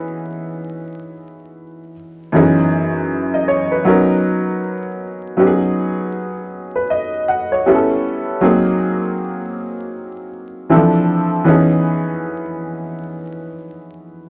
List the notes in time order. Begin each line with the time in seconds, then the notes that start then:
Already playing: E3 B3 C#4 D#4 G#4
2.32 F#2 E3 B3 C#4 D#4 G#4
3.34 D#5
3.48 C#5
3.72 B4
3.85 F#3 B3 C#4 D#4 A#4
5.37 F#3 B3 C#4 D#4 G4
5.47 G#4
6.76 B4
6.90 D#5
7.28 F#5
7.52 C#5
7.66 G3 B3 C#4 E4 G#4
7.74 A4
8.41 F#3 A#3 C4 D#4 G#4
10.70 E3 C4 D4 E4 A4
10.76 F3
11.44 E3 B3 C#4 D#4 G#4